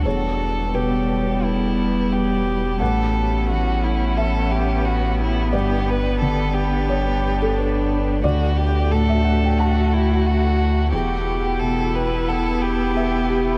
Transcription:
<<
  \new Staff \with { instrumentName = "Felt piano" } { \time 4/4 \key e \dorian \tempo 4 = 88 cis''4 b'2 r4 | fis''2 e''2 | d''2 cis''8. a'16 b'4 | d''4~ d''16 e''16 fis''16 g''16 a''2 |
g''2 fis''4 e''8 g'8 | }
  \new Staff \with { instrumentName = "Felt piano" } { \clef bass \time 4/4 \key e \dorian e,4 b,2. | a,4 e2. | g,4 d2. | d,4 a,2. |
e,4 b,2. | }
  \new Staff \with { instrumentName = "Violin" } { \time 4/4 \key e \dorian a'4 g'4 e'4 g'4 | a'4 fis'8 e'8 a'8 g'8 fis'8 e'8 | g'8 b'8 a'8 g'4. d'4 | fis'8 g'8 a'4 fis'8 e'8 fis'4 |
g'4 a'8 b'8 a'8 g'4. | }
  \new Staff \with { instrumentName = "Viola" } { \time 4/4 \key e \dorian b1 | cis'1 | d'1 | fis'1 |
e'1 | }
  \new Staff \with { instrumentName = "Cello" } { \time 4/4 \key e \dorian g1 | b1~ | b1 | a1 |
b1 | }
  \new Staff \with { instrumentName = "Sub bass" } { \clef bass \time 4/4 \key e \dorian e,,1 | a,,1 | g,,1 | d,1 |
e,,1 | }
>>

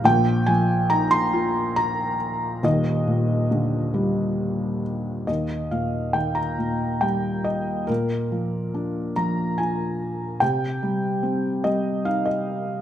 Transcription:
<<
  \new Staff \with { instrumentName = "Felt piano" } { \time 3/4 \key ees \major \tempo 4 = 70 g''8 aes''8 bes''16 c'''8. bes''4 | ees''4 r2 | ees''8 f''8 g''16 bes''8. g''8 ees''8 | bes'4. bes''8 aes''4 |
g''4. ees''8 f''16 ees''8. | }
  \new Staff \with { instrumentName = "Felt piano" } { \clef bass \time 3/4 \key ees \major <bes,, bes,>8 f8 ees'8 f'4. | <ees,, ees,>8 bes,8 d8 g4. | ees,8 bes,8 ees8 bes,8 g4 | bes,8 f8 d'8 f8 f'4 |
c8 g8 c'8 g8 ees'4 | }
>>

